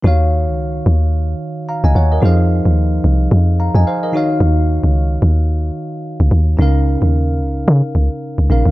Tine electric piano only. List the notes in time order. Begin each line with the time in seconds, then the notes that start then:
0.02 D#3 D#4 F#4 C#5
0.07 F5
1.69 F5 A#5
1.84 D#5 G#5
1.96 C#5 F#5
2.12 A#4 D#5
2.20 F3 D#4 G#4 C5
2.25 F5
3.60 F5 A#5
3.75 D#5 G#5
3.87 C5 F5
4.03 A#4 D#5
4.12 D#3 D#4 F#4 C#5
4.17 F5
6.57 C#3 C#4 D#4 A#4
6.62 F5
8.49 C#3 C#4 D#4 A#4 F5